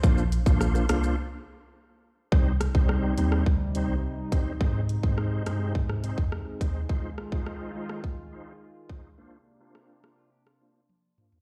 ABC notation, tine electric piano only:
X:1
M:4/4
L:1/16
Q:1/4=105
K:Cm
V:1 name="Tine electric piano" clef=bass
B,,,3 B,,,3 C,,2 z8 | C,,3 C,,3 E,,2 D,,3 C,, z4 | A,,3 A,,3 G,,2 A,,3 F,, z2 E,,2 | z16 |
z16 |]